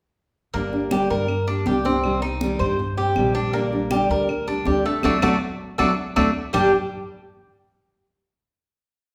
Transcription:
0.54 upright bass G1, steel-string acoustic guitar D3 G3 A#3 D4 G4, cuban tres A#3, high conga
0.73 steel-string acoustic guitar A#3 D4 G4, high conga
0.91 steel-string acoustic guitar D3 G3 A#3 D4 G4, cuban tres G4, high conga, claves
1.10 upright bass G2, cuban tres A#4, high conga
1.28 muted steel-string acoustic guitar stroke, high conga, claves
1.47 steel-string acoustic guitar A#3 D4 G4, cuban tres D4, high conga
1.66 upright bass C2, steel-string acoustic guitar D3 G3 A#3 D4 G4, cuban tres G4, high conga
1.85 steel-string acoustic guitar A#3 D4 G4, cuban tres C4, high conga
2.03 steel-string acoustic guitar C3 D#3 G3 C4 G4, high conga, claves
2.22 steel-string acoustic guitar G3 C4 G4, cuban tres D#4, high conga
2.41 steel-string acoustic guitar C3 D#3 G3 C4 G4, high conga
2.59 upright bass G2, cuban tres C5, high conga, claves
2.79 muted steel-string acoustic guitar stroke, high conga
2.97 steel-string acoustic guitar G3 C4 G4, cuban tres G4, high conga
3.16 upright bass A#1, steel-string acoustic guitar C3 D#3 G3 C4 G4, high conga, claves
3.35 steel-string acoustic guitar G3 C4 G4, cuban tres D4, high conga
3.53 steel-string acoustic guitar D3 G3 D4 G4, cuban tres A#3, high conga
3.72 steel-string acoustic guitar G3 D4 G4, high conga
3.91 steel-string acoustic guitar D3 G3 D4 G4, cuban tres G4, high conga, claves
4.10 upright bass D2, cuban tres A#4, high conga
4.29 muted steel-string acoustic guitar stroke, high conga, claves
4.47 steel-string acoustic guitar G3 D4 G4, cuban tres D4, high conga
4.65 upright bass D2, steel-string acoustic guitar D3 G3 D4 G4, cuban tres G4, high conga
4.85 steel-string acoustic guitar G3 D4 G4, cuban tres A3
5.03 upright bass D2, steel-string acoustic guitar F#3 A3 D4, cuban tres A3 D4 F#4, high conga, claves
5.22 upright bass D2, steel-string acoustic guitar F#3 A3 D4, cuban tres A3 D4 F#4, high conga, claves
5.78 upright bass D2, steel-string acoustic guitar F#3 A3 D4, cuban tres A3 D4 F#4, high conga, claves
6.16 upright bass D2, steel-string acoustic guitar F#3 A3 D4, cuban tres A3 D4 F#4, high conga, claves
6.53 upright bass G1, steel-string acoustic guitar G2 D3 G3 A#3 D4 G4, cuban tres G3 D4 G4, low conga, claves

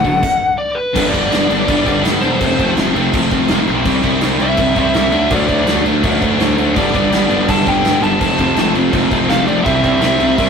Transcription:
Already playing: lead electric guitar F#5
0.04 picked electric bass F#1, distorted electric guitar D3 F#3, overdriven electric guitar A3 D4, kick, open hi-hat
0.23 kick, crash
0.58 lead electric guitar D5
0.75 lead electric guitar B4
0.93 picked electric bass G1, distorted electric guitar G2 D3 G3 B3 D4, kick, crash
1.09 distorted electric guitar G2 D3 G3, lead electric guitar D5
1.13 picked electric bass G1, distorted electric guitar B3 D4, kick, crash
1.31 picked electric bass G1, distorted electric guitar G2 D3 G3 B3 D4, snare, crash
1.49 picked electric bass G1, distorted electric guitar G2 D3 G3 B3 D4, crash
1.65 picked electric bass G1, distorted electric guitar G2 D3 G3 B3, lead electric guitar D5, kick, crash
1.69 distorted electric guitar D4
1.85 picked electric bass G1, distorted electric guitar G2 D3 G3 B3 D4, kick, crash
2.03 picked electric bass G1, distorted electric guitar G2 D3 G3 B3 D4, snare, crash
2.21 picked electric bass E1, distorted electric guitar G2 D3 G3 B3 D4, lead electric guitar C5, crash
2.39 picked electric bass F1, distorted electric guitar F2 C3 F3 A3 C4, kick, crash
2.58 picked electric bass F1, distorted electric guitar F2 C3 F3 A3 C4, kick, crash
2.77 picked electric bass F1, distorted electric guitar F2 C3 F3 A3 C4, snare, crash
2.95 picked electric bass F1, distorted electric guitar F2 C3 F3 A3 C4, crash
3.13 picked electric bass F1, distorted electric guitar F2 C3 F3 A3 C4, kick, crash
3.31 picked electric bass F1, distorted electric guitar F2 C3 F3 A3 C4, kick, crash
3.48 picked electric bass F1, distorted electric guitar F2 C3 F3 A3 C4, snare, crash
3.67 picked electric bass B1, distorted electric guitar F2 C3 F3 A3 C4, crash
3.85 picked electric bass C2, distorted electric guitar C3 G3 C4 E4, kick, crash
4.03 picked electric bass C2, distorted electric guitar C3 G3 C4 E4, kick, crash
4.21 picked electric bass C2, distorted electric guitar C3 G3 C4 E4, snare, crash
4.38 picked electric bass C2, distorted electric guitar C3 G3 C4 E4, lead electric guitar E5, crash
4.56 picked electric bass C2, distorted electric guitar C3 G3 C4 E4, kick, crash
4.75 picked electric bass C2, distorted electric guitar C3 G3 C4 E4, lead electric guitar E5, kick, crash
4.93 picked electric bass C2, distorted electric guitar C3 G3 C4 E4, snare, crash
5.11 picked electric bass D2, distorted electric guitar D3 F#3 A3 D4, crash
5.30 picked electric bass D2, distorted electric guitar D3 F#3 A3 D4, lead electric guitar D5, kick, crash
5.47 picked electric bass D2, distorted electric guitar D3 F#3 A3 D4, kick, crash
5.66 picked electric bass D2, distorted electric guitar D3 F#3 A3 D4, snare, crash
5.85 picked electric bass D2, distorted electric guitar D3 F#3 A3 D4, crash
6.03 picked electric bass D2, distorted electric guitar D3 F#3 A3 D4, kick, crash
6.20 picked electric bass D2, distorted electric guitar D3 F#3 A3 D4, kick, crash
6.38 picked electric bass D2, distorted electric guitar D3 F#3 A3 D4, snare, crash
6.57 picked electric bass D2, distorted electric guitar D3 F#3 A3 D4, crash
6.75 picked electric bass G1, distorted electric guitar G2 D3 G3 B3 D4, lead electric guitar D5, kick, crash
6.94 picked electric bass G1, distorted electric guitar G2 D3 G3 B3 D4, lead electric guitar D5, kick, crash
7.11 picked electric bass G1, distorted electric guitar G2 D3 G3 B3 D4, snare, crash
7.29 picked electric bass G1, distorted electric guitar G2 D3 G3 B3 D4, crash
7.48 picked electric bass G1, distorted electric guitar G2 D3 G3 B3 D4, lead electric guitar A5, kick, crash
7.66 picked electric bass G1, distorted electric guitar G2 D3 G3 B3 D4, lead electric guitar G5, kick, crash
7.84 picked electric bass G1, distorted electric guitar G2 D3 G3 B3 D4, snare, crash
8.02 picked electric bass G1, distorted electric guitar G2 D3 G3 B3 D4, lead electric guitar A5, crash
8.19 picked electric bass F1, distorted electric guitar F2 C3 F3 A3 C4, kick, crash
8.39 picked electric bass F1, distorted electric guitar F2 C3 F3 A3 C4, kick, crash
8.56 picked electric bass F1, distorted electric guitar F2 C3 F3 A3 C4, snare, crash
8.74 picked electric bass F1, distorted electric guitar F2 C3 F3 A3 C4, crash
8.92 picked electric bass F1, distorted electric guitar F2 C3 F3 A3 C4, kick, crash
9.11 picked electric bass F1, distorted electric guitar F2 C3 F3 A3 C4, kick, crash
9.28 picked electric bass F1, distorted electric guitar F2 C3 F3 A3 C4, lead electric guitar F5, snare, crash
9.46 picked electric bass F1, distorted electric guitar F2 C3 F3 A3 C4, lead electric guitar D5, crash
9.64 picked electric bass C2, distorted electric guitar C3 G3 C4 E4, lead electric guitar E5, kick, crash
9.82 picked electric bass C2, distorted electric guitar C3 G3 C4 E4, kick, crash
10.01 picked electric bass C2, distorted electric guitar C3 G3 C4 E4, snare, crash
10.19 picked electric bass C2, distorted electric guitar C3 G3 C4 E4, crash
10.36 picked electric bass C2, distorted electric guitar C3 G3 C4 E4, lead electric guitar E5, kick, crash

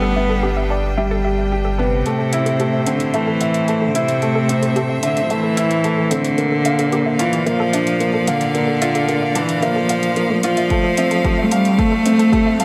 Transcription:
Already playing: analog synth bass G1, felt piano G3 B3 D4 D5, string quartet G3 D4 B4 G5, cello B3
0.02 synth arpeggio sound A4
0.16 felt piano B3, synth arpeggio sound E5
0.30 synth arpeggio sound A4
0.43 felt piano G3, synth arpeggio sound G4
0.57 synth arpeggio sound E5
0.70 felt piano D5, synth arpeggio sound A5
0.98 felt piano G3, synth arpeggio sound E5
1.11 synth arpeggio sound A4
1.24 felt piano G4, synth arpeggio sound E5
1.52 felt piano G4
1.65 synth arpeggio sound A4
1.78 cello C3, felt piano B3, synth arpeggio sound A4
2.06 string quartet A2, felt piano A3, closed hi-hat
2.15 string quartet A3
2.19 synth arpeggio sound A4
2.32 felt piano E4, synth arpeggio sound E5, closed hi-hat
2.46 synth arpeggio sound A4, string quartet C5, closed hi-hat
2.60 felt piano A3, synth arpeggio sound G4, closed hi-hat
2.73 synth arpeggio sound E5
2.86 cello D3, felt piano C4, synth arpeggio sound A5, closed hi-hat
3.00 closed hi-hat
3.14 cello E3, felt piano A3, synth arpeggio sound E5, closed hi-hat
3.27 synth arpeggio sound A4
3.41 synth arpeggio sound E5, felt piano E5, closed hi-hat
3.54 closed hi-hat
3.68 felt piano A3, closed hi-hat
3.82 synth arpeggio sound A4
3.88 cello D3
3.95 cello C3, felt piano E4, synth arpeggio sound A4, closed hi-hat
4.01 string quartet E5
4.08 closed hi-hat
4.22 felt piano A3, closed hi-hat
4.35 synth arpeggio sound A4
4.49 felt piano C4, synth arpeggio sound E5, closed hi-hat
4.63 synth arpeggio sound A4, closed hi-hat
4.76 felt piano A3, synth arpeggio sound G4, closed hi-hat
4.90 synth arpeggio sound E5
5.03 analog synth bass A1, cello D3, felt piano E5, synth arpeggio sound A5, closed hi-hat
5.17 closed hi-hat
5.23 cello F3
5.30 cello E3, felt piano A3, synth arpeggio sound E5, closed hi-hat
5.43 synth arpeggio sound A4
5.57 analog synth bass A1, felt piano E4, synth arpeggio sound E5, closed hi-hat
5.71 closed hi-hat
5.84 felt piano A3, closed hi-hat
5.98 synth arpeggio sound A4
6.11 cello D3, felt piano C4, synth arpeggio sound A4, closed hi-hat
6.25 closed hi-hat
6.38 string quartet A#2, felt piano A#3, closed hi-hat
6.52 synth arpeggio sound A4
6.65 analog synth bass A#1, synth arpeggio sound E5, felt piano F5, closed hi-hat
6.72 string quartet A#3 D5
6.79 synth arpeggio sound A4, closed hi-hat
6.92 felt piano A#3, synth arpeggio sound G4, closed hi-hat
7.06 synth arpeggio sound E5
7.16 cello E3, felt piano F4, string quartet F5, synth arpeggio sound A5, closed hi-hat
7.33 closed hi-hat
7.46 cello F3, felt piano A#3, synth arpeggio sound E5, closed hi-hat
7.60 synth arpeggio sound A4
7.73 felt piano D4, synth arpeggio sound E5, closed hi-hat
7.87 closed hi-hat
8.00 felt piano A#3, closed hi-hat
8.14 synth arpeggio sound A4
8.27 cello D3, synth arpeggio sound A4, felt piano F5, closed hi-hat
8.41 closed hi-hat
8.55 felt piano A#3, closed hi-hat
8.68 synth arpeggio sound A4
8.81 felt piano F4, synth arpeggio sound E5, closed hi-hat
8.95 synth arpeggio sound A4, closed hi-hat
9.09 felt piano A#3, synth arpeggio sound G4, closed hi-hat
9.22 synth arpeggio sound E5
9.35 cello E3, felt piano D4, synth arpeggio sound A5, closed hi-hat
9.49 closed hi-hat
9.62 cello F3, felt piano A#3, synth arpeggio sound E5, closed hi-hat
9.76 synth arpeggio sound A4
9.89 synth arpeggio sound C5, felt piano F5, closed hi-hat
10.03 closed hi-hat
10.16 felt piano A#3, closed hi-hat
10.30 synth arpeggio sound A3
10.43 analog synth bass A#1, cello F3, felt piano F4, closed hi-hat
10.57 synth arpeggio sound E5, closed hi-hat
10.70 string quartet F3, felt piano A3, kick, closed hi-hat
10.84 synth arpeggio sound A4
10.97 felt piano C4, synth arpeggio sound E5, closed hi-hat
11.08 string quartet C4, synth arpeggio sound A4, closed hi-hat
11.24 felt piano A3, synth arpeggio sound G4, kick, closed hi-hat
11.38 synth arpeggio sound E5
11.45 cello A3
11.51 cello G3, felt piano F5, synth arpeggio sound A5, closed hi-hat
11.65 closed hi-hat
11.78 cello A3, felt piano A3, kick, closed hi-hat
11.92 synth arpeggio sound A4
12.05 felt piano C4, string quartet A4, synth arpeggio sound E5, closed hi-hat
12.19 synth arpeggio sound A4, closed hi-hat
12.32 felt piano A3, synth arpeggio sound G4, kick, closed hi-hat
12.46 synth arpeggio sound E5
12.60 cello F3, felt piano F5, synth arpeggio sound A5, closed hi-hat

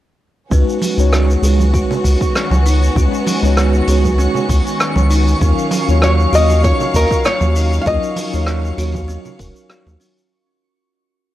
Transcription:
0.50 analog synth bass C#2, string section D#3 B3 C#4 F#4, tine electric piano G#3 C#4 D#4 F#4 B4, kalimba C#4, synth texture C#6, kick, shaker
0.69 shaker
0.81 open hi-hat, high conga, shaker
0.97 analog synth bass C#2, tine electric piano G#3 C#4 D#4 F#4 C#5, shaker
1.13 kalimba G#4, cross-stick, shaker
1.30 shaker
1.42 analog synth bass C#2, kalimba G#4, open hi-hat, shaker
1.59 high conga, shaker
1.74 kalimba F#4, kick, shaker
1.91 low conga, shaker
2.04 analog synth bass C#2, kick, open hi-hat, shaker
2.21 kick, shaker
2.35 kalimba C#4, cross-stick, shaker
2.51 analog synth bass C#2, high conga, shaker
2.66 kalimba D#4, open hi-hat, shaker
2.83 shaker
2.95 analog synth bass C#2, tine electric piano G#3 C#4 D#4 F#4 B4, kalimba F#4, kick, shaker
3.14 shaker
3.27 open hi-hat, high conga, shaker
3.42 analog synth bass C#2, tine electric piano G#3 C#4 D#4 F#4 C#5, shaker
3.57 kalimba G#4, cross-stick, shaker
3.74 shaker
3.87 analog synth bass C#2, kalimba G#4, open hi-hat, shaker
4.05 kick, high conga, shaker
4.18 kalimba C#4, shaker
4.35 low conga, shaker
4.49 analog synth bass C#2, kick, open hi-hat, shaker
4.67 shaker
4.80 cross-stick, shaker
4.96 analog synth bass C#2, high conga, shaker
5.10 kalimba D#4, open hi-hat, shaker
5.28 shaker
5.41 analog synth bass D#2, tine electric piano F#3 C#4 D#4 F4 A#4, string section F#3 F5, kalimba C#4, kick, shaker
5.58 shaker
5.71 open hi-hat, high conga, shaker
5.88 analog synth bass D#2, tine electric piano F#3 C#4 D#4 F4 C#5, shaker
6.02 kalimba F#4, nylon-string guitar C#5, cross-stick, shaker
6.19 shaker
6.33 analog synth bass D#2, kalimba F#4, nylon-string guitar D#5, open hi-hat, shaker
6.50 high conga, shaker
6.64 kalimba F4, nylon-string guitar C#5, kick, shaker
6.80 low conga, shaker
6.94 analog synth bass D#2, nylon-string guitar A#4, kick, open hi-hat, shaker
7.11 kick, shaker
7.24 kalimba C#4, nylon-string guitar C#5, cross-stick, shaker
7.41 analog synth bass D#2, high conga, shaker
7.56 kalimba D#4, open hi-hat, shaker
7.73 shaker
7.82 tine electric piano F#3, nylon-string guitar F5
7.86 analog synth bass D#2, tine electric piano C#4 D#4 F4 A#4, kalimba F4, nylon-string guitar D#5, kick, shaker
8.03 shaker
8.16 open hi-hat, high conga, shaker
8.32 analog synth bass D#2, tine electric piano F#3 C#4 D#4 F4 C#5, shaker
8.46 kalimba F#4, cross-stick, shaker
8.65 shaker
8.78 analog synth bass D#2, kalimba F#4, open hi-hat, shaker
8.95 kick, high conga, shaker
9.08 kalimba C#4, shaker
9.25 low conga, shaker
9.39 analog synth bass D#1, kalimba A#4, kick, open hi-hat, shaker
9.56 shaker
9.70 kalimba F#4, cross-stick, shaker
9.86 analog synth bass D#2, high conga, shaker
10.00 kalimba C#4, open hi-hat, shaker
10.17 shaker

